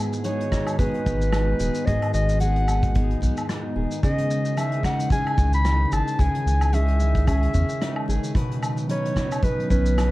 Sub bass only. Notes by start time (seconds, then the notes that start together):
1.06 G#1
1.60 D#1
1.88 G#1
2.14 G#1
3.22 B1
3.76 D#1
5.38 C#2
5.92 G#1
6.19 C#2
6.46 C#2
7.54 E2
8.09 G#1
9.71 B1